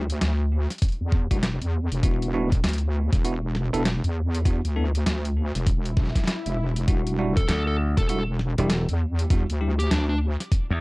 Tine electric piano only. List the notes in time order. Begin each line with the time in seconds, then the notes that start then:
1.31 G3 D4 E4 F#4
2.03 B3 D4 E4 F#4
2.34 B3 D4 E4 F#4
3.25 B3 D4 E4 F#4
3.73 B3 D4 E4 A4
4.45 B3 D4 E4 F#4
4.76 B3 D4 E4 A4
6.88 G3 D4 E4 F#4
7.19 G3 D4 E4 F#4
8.10 G3 D4 E4 F#4
8.58 G3 D4 E4 G4
9.31 G3 D4 E4 F#4
9.61 G3 D4 E4 G4